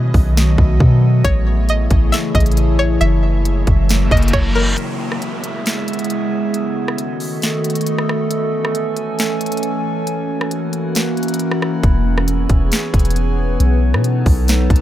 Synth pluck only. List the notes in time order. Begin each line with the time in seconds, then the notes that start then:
1.24 C#5
1.70 D#5
2.12 E5
2.35 D#5
2.79 C#5
3.01 E5
4.12 D#5
4.33 C#5
4.55 A#4